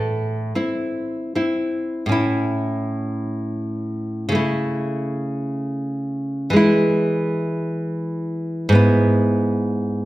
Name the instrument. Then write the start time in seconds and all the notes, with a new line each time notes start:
nylon-string guitar
Already playing: A2 A4
0.55 C4 E4
1.35 C4 E4
2.06 A2 C#4
2.12 E4
4.29 C#3 A3
4.35 E4
6.50 E3 G#3
6.56 E4
8.69 G#2 B3
8.75 E4